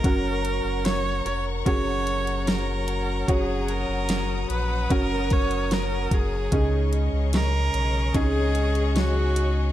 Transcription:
<<
  \new Staff \with { instrumentName = "String section" } { \time 4/4 \key fis \major \tempo 4 = 74 << { cis'''1 | dis'''1 | cis'''1 | } \\ { <cis'' fis'' ais''>1~ | <cis'' fis'' ais''>1 | <gis' cis'' dis''>1 | } >> }
  \new Staff \with { instrumentName = "Viola" } { \time 4/4 \key fis \major ais'4 cis''8 cis''8 cis''4 ais'4 | gis'8 ais'4 b'8 ais'8 cis''8 ais'8 gis'8~ | gis'8 r8 ais'4 gis'4 fis'4 | }
  \new Staff \with { instrumentName = "Upright piano" } { \time 4/4 \key fis \major <cis' fis' ais'>2 <cis' fis' gis'>2 | <cis' fis' cis''>2 <cis' fis' ais'>2 | <cis' dis' gis'>2 <cis' dis' gis'>2 | }
  \new Staff \with { instrumentName = "Upright piano" } { \clef bass \time 4/4 \key fis \major r1 | r1 | cis4. r2 r8 | }
  \new Staff \with { instrumentName = "Clean electric guitar" } { \time 4/4 \key fis \major <fis cis' fis' ais'>4. <cis' fis' ais'>8 <fis cis' fis' ais'>4 <fis cis' fis' ais'>4 | <fis cis' fis'>2 <fis cis' fis' ais'>4 <fis cis' fis' ais'>4 | <cis gis cis' dis' gis'>2 <gis cis' dis' gis'>4 <gis cis' dis' gis'>4 | }
  \new Staff \with { instrumentName = "Sub bass" } { \clef bass \time 4/4 \key fis \major fis,,8. fis,,8. eis,,8 fis,,2 | fis,,8. fis,,8. ais,,8 fis,,4. fis,,8 | cis,8. cis,8. b,,8 cis,2 | }
  \new DrumStaff \with { instrumentName = "Drums" } \drummode { \time 4/4 <hh bd>8 hh8 <hh sn>8 hh8 <hh bd>8 hh16 hh16 <hh sn>8 hh8 | <hh bd>8 hh8 <hh sn>8 hh8 <hh bd>8 <hh bd>16 hh16 <hh sn>8 <hh bd>8 | <hh bd>8 hh8 <hh sn>8 hh8 <hh bd>8 hh16 hh16 <hh sn>8 hh8 | }
>>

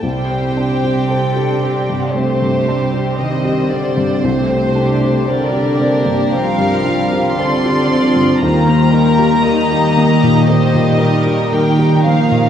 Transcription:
<<
  \new Staff \with { instrumentName = "Violin section" } { \time 4/4 \key c \dorian \tempo 4 = 57 g''2 c''4 ees''8 d''8 | c''4 d''4 f''4 c'''4 | bes''2 ees''4 g''8 f''8 | }
  \new Staff \with { instrumentName = "Violin section" } { \time 4/4 \key c \dorian << { c''4 a'8 g'2~ g'8 | g'2. d''4 | c''8 bes'8 ees''4 c''8 bes'8 bes'4 | } \\ { g'2 g'4 c''4~ | c''4 bes'2 a'4 | g'1 | } >> }
  \new Staff \with { instrumentName = "Grand piano" } { \time 4/4 \key c \dorian c,16 c'16 d'16 g'16 c''16 g'16 c'16 g,16 c'16 g,16 d'16 g'16 c''16 g'16 c'16 g,16 | c,16 c'16 d'16 g'16 c''16 g'16 c'16 g,16 c'16 g,16 d'16 g'16 c''16 g'16 c'16 g,16 | ees,16 bes16 ees'16 g'16 bes'16 g'16 bes16 bes,16 bes16 bes,16 ees'16 g'16 bes'16 g'16 bes16 bes,16 | }
  \new Staff \with { instrumentName = "Viola section" } { \time 4/4 \key c \dorian << { c'4 d'4 c'2 | c'8 d'8 d'4 c'8 f'4.~ | f'4 ees'8 ees'2~ ees'8 | } \\ { g8 c'4. a8 g4. | a4 g8 bes8 g4 g8 f8 | g2 g4 bes4 | } >> }
  \new Staff \with { instrumentName = "French horn section" } { \clef bass \time 4/4 \key c \dorian g2 c4 ees8 d8 | c4 d4 f4 c'4 | bes2 ees4 g8 f8 | }
  \new Staff \with { instrumentName = "Cello section" } { \clef bass \time 4/4 \key c \dorian c1~ | c2. d4 | ees1 | }
>>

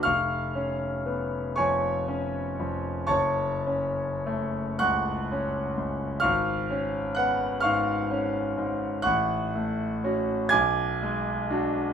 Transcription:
<<
  \new Staff \with { instrumentName = "Grand piano" } { \time 6/8 \key fis \minor \tempo 4. = 41 <eis'' cis''' eis'''>4. <cis'' gis'' cis'''>4. | <cis'' a'' cis'''>4. <fis'' cis''' fis'''>4. | <eis'' cis''' eis'''>4 <fis'' fis'''>8 <eis'' cis''' eis'''>4. | <fis'' cis''' fis'''>4. <gis'' d''' gis'''>4. | }
  \new Staff \with { instrumentName = "Grand piano" } { \time 6/8 \key fis \minor eis,,8 cis'8 b8 eis,8 cis'8 eis,8 | fis,,8 cis'8 a8 cis,8 cis'8 cis,8 | gis,,8 cis'8 b8 gis,8 cis'8 gis,8 | a,,8 a8 <cis' fis'>8 b,,8 gis8 <d' fis'>8 | }
>>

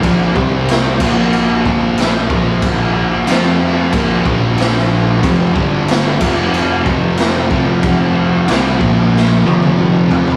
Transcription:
<<
  \new Staff \with { instrumentName = "Tonewheel organ" } { \time 4/4 \key bes \lydian \tempo 4 = 92 <bes f' c''>8 <c' g' d''>4 <bes f' c''>2~ <bes f' c''>8~ | <bes f' c''>4 <f c' g'>4 <bes f' c''>2 | <f c' g'>8 <g d' a'>4 <f c' g'>2~ <f c' g'>8~ | <f c' g'>4. <bes f' c''>4 <f c' g'>4. | }
  \new Staff \with { instrumentName = "Distorted electric guitar" } { \clef bass \time 4/4 \key bes \lydian <bes, f bes>8 <c g c'>4 <bes, f bes>4 <bes, f bes>4 <bes, f bes>8~ | <bes, f bes>4 <f c' f'>4 <bes, f bes>8 <bes, f bes>4. | <f, c f>8 <g, d g>4 <f, c f>4 <f, c f>4 <f, c f>8~ | <f, c f>4 <c g c'>8 <bes, f bes>4 <f, c f>4 <f, c f>8 | }
  \new Staff \with { instrumentName = "Distorted electric guitar" } { \clef bass \time 4/4 \key bes \lydian <bes, f bes>8 <c g c'>4 <bes, f bes>4 <bes, f bes>4 <bes, f bes>8~ | <bes, f bes>4 <f c' f'>4 <bes, f bes>8 <bes, f bes>4. | <f, c f>8 <g, d g>4 <f, c f>4 <f, c f>4 <f, c f>8~ | <f, c f>4 <c g c'>8 <bes, f bes>4 <f, c f>4 <f, c f>8 | }
  \new Staff \with { instrumentName = "Distorted electric guitar" } { \clef bass \time 4/4 \key bes \lydian <bes, f bes>8 <c g c'>4 <bes, f bes>4 <bes, f bes>4 <bes, f bes>8~ | <bes, f bes>4 <f c' f'>4 <bes, f bes>8 <bes, f bes>4. | <f, c f>8 <g, d g>4 <f, c f>4 <f, c f>4 <f, c f>8~ | <f, c f>4 <c g c'>8 <bes, f bes>4 <f, c f>4 <f, c f>8 | }
  \new Staff \with { instrumentName = "Fingered electric bass" } { \clef bass \time 4/4 \key bes \lydian bes,,8 c,4 bes,,4 bes,,4 bes,,8~ | bes,,4 f,4 bes,,8 bes,,4. | f,,8 g,,4 f,,4 f,,4 f,,8~ | f,,4 c,8 bes,,4 f,,4 f,,8 | }
  \new DrumStaff \with { instrumentName = "Drums" } \drummode { \time 4/4 <cymc bd>8 bd8 <cymc sn>8 <cymc bd>8 cymc8 bd8 <cymc sn>8 bd8 | <cymc bd>4 <cymc sn>4 <cymc bd>8 bd8 <cymc sn>16 sn8. | <cymc bd>8 bd8 <cymc sn>8 <cymc bd>8 cymc8 bd8 <cymc sn>8 bd8 | <cymc bd>4 <cymc sn>8 bd8 sn8 tommh16 tommh16 toml8 tomfh16 tomfh16 | }
>>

